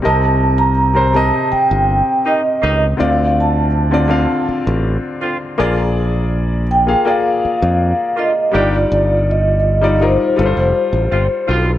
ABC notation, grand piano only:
X:1
M:4/4
L:1/16
Q:1/4=81
K:Cdor
V:1 name="Grand piano"
[C,CBe]4 z [C,CBc] [C,CBe]6 z4 | [D,CFd]4 z [D,CFd] [D,CFf]6 z2 [B,F_Ad]2- | [B,F_Ad]4 z [B,FAf] [B,FAd]6 z2 [G,EFd]2- | [G,EFd]4 z [G,EFd] [G,EFB]2 [G,FA=Bc]6 z2 |]